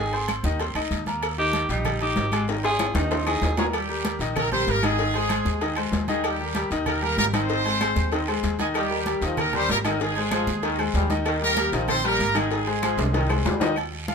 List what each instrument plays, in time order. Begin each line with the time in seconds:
Already playing: upright bass G#1, upright piano D#3 D#4, tenor saxophone G#4
0.00 upright piano D#5
0.13 upright piano C4 C5 C6, high conga, low agogo
0.28 cowbell, high conga, low agogo, short guiro, claves
0.43 upright bass D#2, upright piano D#3 D#4 D#5, high conga, short guiro
0.59 upright piano C4 C5 C6, cowbell, high conga, low agogo, long guiro
0.75 upright bass D2, upright piano D#4 D#5 D#6, high conga, low agogo, claves
0.90 upright bass D#2, cowbell, high conga, short guiro
1.06 upright piano A#3 A#4 A#5, high conga, low agogo, short guiro
1.22 cowbell, high conga, low agogo, long guiro, claves
1.38 upright piano D#3 D#4 D#5, tenor saxophone G4, high conga
1.53 cowbell, high conga, low agogo, short guiro
1.69 upright bass A#1, upright piano G3 G4 G5, tenor saxophone D#4, cowbell, high conga, short guiro
1.85 cowbell, high conga, low conga, low agogo, long guiro, claves
2.00 upright piano D#4 D#5 D#6, tenor saxophone G4, high conga, low agogo
2.16 upright bass G#1, cowbell, high conga, low timbale, short guiro
2.32 upright piano G#3 G#4 G#5, cowbell, high conga, low agogo, short guiro, claves
2.48 upright piano D#3 D#4 D#5, cowbell, high bongo, high conga, long guiro
2.63 upright piano C4 C5 C6, tenor saxophone G#4, high bongo, high conga, low agogo
2.79 cowbell, low bongo, high conga, low agogo, short guiro, claves
2.94 upright bass D#2, upright piano D#3 D#4 D#5, tenor saxophone D#4, low bongo, high conga, high timbale, short guiro
3.11 upright piano C4 C5 C6, cowbell, low bongo, high conga, high timbale, low agogo, long guiro
3.26 upright piano D#4 D#5 D#6, tenor saxophone G#4, low bongo, high conga, low agogo, claves
3.42 upright bass D#2, cowbell, low bongo, high conga, low timbale, short guiro
3.57 horn section G#3 G#4, upright piano A#3 A#4 A#5, low bongo, high conga, low timbale, low agogo, short guiro
3.73 horn section G3 G4, cowbell, high conga, low agogo, long guiro, claves
3.89 upright piano G3 G4 A#4, high conga
4.04 upright piano G3 G4 A#4, cowbell, high conga, low agogo, short guiro
4.19 upright bass A#1, upright piano D#3 D#4 D#5, cowbell, high conga, short guiro
4.36 horn section A#3 A#4, cowbell, high conga, low conga, low agogo, long guiro, claves
4.52 upright piano G3 G4 A#4, horn section C4 C5, high conga, low conga, low agogo
4.66 upright bass G#1, horn section A#3 A#4, cowbell, high conga, short guiro
4.83 upright piano D#3 D#4 D#5, horn section G#3 G#4, cowbell, high conga, low agogo, short guiro, claves
4.99 upright piano D#3 D#4 D#5, cowbell, high conga, long guiro
5.14 upright piano G#3 G#4 C5, high conga, low agogo
5.29 upright piano G#3 G#4 C5, cowbell, high conga, low agogo, short guiro, claves
5.45 upright bass D#2, high conga, short guiro
5.61 upright piano D#3 D#4 D#5, cowbell, high conga, low agogo, long guiro
5.76 upright piano G#3 G#4 C5, high conga, low agogo, claves
5.92 upright bass D#2, cowbell, high conga, low timbale, short guiro
6.08 upright piano D#3 D#4 D#5, horn section G#3 G#4, high conga, low agogo, short guiro
6.23 horn section G3 G4, cowbell, high conga, low agogo, long guiro, claves
6.39 upright piano G3 G4 A#4, high conga
6.55 upright piano G3 G4 A#4, cowbell, high conga, low agogo, short guiro
6.71 upright bass D#2, upright piano D#3 D#4 D#5, cowbell, high conga, short guiro
6.86 horn section A#3 A#4, cowbell, high conga, low conga, low agogo, long guiro, claves
7.02 upright piano G3 G4 A#4, horn section A#3 A#4, high conga, low agogo
7.17 upright bass G#1, horn section A#3 A#4, cowbell, high conga, low timbale, short guiro
7.33 upright piano D#3 D#4 D#5, horn section C4 C5, cowbell, high conga, low agogo, short guiro, claves
7.49 upright piano D#3 D#4 D#5, cowbell, high conga, long guiro
7.65 upright piano G#3 G#4 C5, high conga, low agogo
7.80 upright piano G#3 G#4 C5, cowbell, high conga, low agogo, short guiro, claves
7.96 upright bass D#2, high conga, short guiro
8.12 upright piano D#3 D#4 D#5, cowbell, high conga, low agogo, long guiro
8.28 upright piano G#3 G#4 C5, high conga, low agogo, claves
8.43 upright bass D#2, cowbell, high conga, short guiro
8.59 upright piano D#3 D#4 D#5, horn section G#3 G#4, high conga, low agogo, short guiro
8.74 trombone section D#3, horn section G3 G4, cowbell, high conga, low agogo, long guiro, claves
8.90 upright piano G3 G4 A#4, high conga
9.06 upright piano G3 G4 A#4, cowbell, high conga, low agogo, short guiro
9.21 upright bass D#2, upright piano D#3 D#4 D#5, trombone section F3, cowbell, high conga, short guiro
9.37 horn section A#3 A#4, cowbell, high conga, low conga, low agogo, long guiro, claves
9.53 upright piano G3 G4 A#4, trombone section G3, horn section C4 C5, high conga, low conga, low agogo
9.69 upright bass G#1, horn section A#3 A#4, cowbell, high conga, low timbale, short guiro
9.85 upright piano D#3 D#4 D#5, trombone section D#3, horn section G#3 G#4, cowbell, high conga, low agogo, short guiro, claves
9.92 horn section A#4
9.99 upright piano D#3 D#4 D#5, horn section G#3 G#4, cowbell, high conga, long guiro
10.16 upright piano G#3 G#4 C5, high conga, low agogo
10.31 trombone section F3, upright piano G#3 G#4 C5, cowbell, high conga, low agogo, short guiro, claves
10.47 upright bass D#2, high conga, short guiro
10.62 trombone section D#3, upright piano D#3 D#4 D#5, cowbell, high conga, low agogo, long guiro
10.78 upright piano G#3 G#4 C5, high conga, low agogo, claves
10.94 upright bass D#2, trombone section G3, cowbell, high conga, low timbale, short guiro
11.10 upright piano D#3 D#4 D#5, high conga, low agogo, short guiro
11.25 trombone section D#3, cowbell, low agogo, long guiro, claves
11.42 upright piano G3 G4 A#4, horn section A#3 A#4, high conga
11.57 upright piano G3 G4 A#4, cowbell, high conga, low agogo, short guiro
11.72 upright bass A#1, upright piano D#3 D#4 D#5, trombone section F3, cowbell, high conga, short guiro
11.88 horn section C4 C5, cowbell, high conga, low conga, low agogo, long guiro, claves
12.03 trombone section G3, upright piano G3 G4 A#4, horn section A#3 A#4, high conga, low agogo
12.19 upright bass G#1, cowbell, high conga, short guiro
12.35 trombone section D#3, upright piano D#3 D#4 D#5, horn section G#3 G#4, cowbell, high conga, low agogo, short guiro, claves
12.51 upright piano D#3 D#4 D#5, cowbell, high conga, long guiro
12.67 upright piano G#3 G#4 C5, high conga, low agogo
12.82 trombone section F3, upright piano G#3 G#4 C5, cowbell, high conga, low agogo, short guiro, claves
12.97 upright bass C2, high bongo, high conga, high timbale, short guiro
13.13 upright piano D#3 D#4 D#5, trombone section D#3, cowbell, low bongo, high conga, low agogo, long guiro
13.29 upright piano G#3 G#4 C5, low bongo, high conga, low agogo, claves
13.45 trombone section G3, cowbell, low bongo, high conga, low timbale, short guiro
13.60 upright piano D#3 D#4 D#5, low bongo, high conga, low timbale, low agogo, short guiro
13.76 high conga, low agogo, long guiro, claves
13.93 high conga
14.08 upright piano F4 F5, high conga, low agogo, short guiro